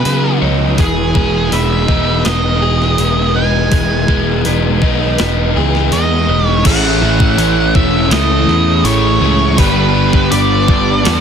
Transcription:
Already playing: overdriven electric guitar C#3 B3 D#4 G#4, clean electric guitar G#4 B4, lead electric guitar B4
0.04 picked electric bass C#3, overdriven electric guitar F#3 B3, open hi-hat
0.41 picked electric bass C#2, overdriven electric guitar F#3 D#4, clean electric guitar C#5
0.78 picked electric bass E1, overdriven electric guitar E3, clean electric guitar G#4, lead electric guitar G#4, kick, open hi-hat
1.14 picked electric bass E1, overdriven electric guitar G#3 B3, kick
1.51 picked electric bass E1, overdriven electric guitar G#3 D#4, clean electric guitar B4, lead electric guitar E5, open hi-hat
1.88 picked electric bass E1, overdriven electric guitar B3 D#4, kick
2.25 picked electric bass E1, overdriven electric guitar B3 D#4, clean electric guitar B4, lead electric guitar D#5, snare, open hi-hat
2.61 overdriven electric guitar E3 G#4, clean electric guitar G#4
2.82 snare
2.98 picked electric bass E1, overdriven electric guitar G#3 B3, open hi-hat
3.35 overdriven electric guitar G#3 D#4, clean electric guitar B4, lead electric guitar G#5
3.71 picked electric bass E1, overdriven electric guitar E3, clean electric guitar G#4, kick, open hi-hat
4.08 picked electric bass E1, overdriven electric guitar G#3 B3, kick
4.45 picked electric bass E1, overdriven electric guitar G#3 D#4, clean electric guitar B4, open hi-hat
4.82 picked electric bass B1, overdriven electric guitar B3 D#4, kick
5.18 picked electric bass E1, overdriven electric guitar B3 D#4, clean electric guitar B4, snare, open hi-hat
5.56 picked electric bass C#2, overdriven electric guitar E3 G#4, clean electric guitar G#4
5.75 snare
5.92 picked electric bass E2, overdriven electric guitar G#3 B3, lead electric guitar D#5, open hi-hat
6.28 picked electric bass E1, overdriven electric guitar G#3 D#4, clean electric guitar B4
6.49 lead electric guitar C#5
6.63 picked electric bass A1, overdriven electric guitar A2 E3 A3 C#4 E4, clean electric guitar G#4, lead electric guitar F#5, kick, open hi-hat, crash
6.68 overdriven electric guitar C#4 E4
7.01 picked electric bass A1, overdriven electric guitar A3 C#4 E4
7.20 kick
7.37 picked electric bass A1, overdriven electric guitar E3 A3 C#4 E4, clean electric guitar C#5, open hi-hat
7.74 picked electric bass E1, overdriven electric guitar A3 C#4 E4, lead electric guitar E5, kick
8.10 picked electric bass C#2, overdriven electric guitar A2 E3 A3 C#4 E4, clean electric guitar A4, lead electric guitar D#5, snare, open hi-hat
8.47 picked electric bass E2, clean electric guitar G#4, snare
8.84 picked electric bass A1, overdriven electric guitar E3 A3 C#4 E4, lead electric guitar C#5, open hi-hat
9.20 picked electric bass C#2, overdriven electric guitar A3 C#4 E4, clean electric guitar G#4
9.56 picked electric bass G1, overdriven electric guitar G2 D3 G3 B3 D4, clean electric guitar G4, lead electric guitar B4, kick, open hi-hat
9.94 overdriven electric guitar G3 B3 D4
10.13 kick
10.30 picked electric bass G1, overdriven electric guitar D3 G3 B3 D4, clean electric guitar B4, lead electric guitar D5, open hi-hat
10.68 picked electric bass G1, overdriven electric guitar G3 B3 D4, kick
11.04 picked electric bass E2, overdriven electric guitar G2 D3 G3 B3 D4, clean electric guitar A4, snare, open hi-hat

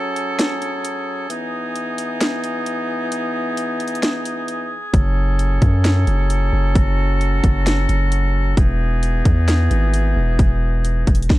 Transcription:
Already playing: woodwind section F#3 C#4 G#4 A4
0.16 closed hi-hat
0.39 snare, closed hi-hat
0.62 closed hi-hat
0.85 closed hi-hat
1.30 woodwind section E3 B3 D#4, closed hi-hat
1.76 closed hi-hat
1.98 closed hi-hat
2.21 snare, closed hi-hat
2.44 closed hi-hat
2.66 closed hi-hat
3.12 closed hi-hat
3.57 closed hi-hat
3.80 closed hi-hat, open hi-hat
3.88 closed hi-hat
3.95 closed hi-hat
4.03 snare, closed hi-hat
4.25 closed hi-hat
4.48 closed hi-hat
4.94 808-style bass F#1, woodwind section F#3 C#4 A4, kick, closed hi-hat
5.39 closed hi-hat
5.62 808-style bass F#2, kick, closed hi-hat
5.85 snare, closed hi-hat
6.07 808-style bass F#1, closed hi-hat
6.30 closed hi-hat
6.53 808-style bass F#1
6.75 808-style bass F#1, woodwind section F#4, kick, closed hi-hat
7.21 closed hi-hat
7.44 808-style bass F#1, kick, closed hi-hat
7.67 snare, closed hi-hat
7.89 808-style bass F#1, closed hi-hat
8.12 closed hi-hat
8.57 808-style bass E1, woodwind section E3 B3 D#4 G#4, kick, closed hi-hat
9.03 closed hi-hat
9.25 808-style bass E2, kick, closed hi-hat
9.48 snare, closed hi-hat
9.71 808-style bass G#1, closed hi-hat
9.94 closed hi-hat
10.16 808-style bass E1
10.39 808-style bass E1, kick, closed hi-hat
10.85 closed hi-hat
11.07 808-style bass E1, kick, closed hi-hat, open hi-hat
11.15 closed hi-hat
11.22 closed hi-hat
11.30 kick, snare

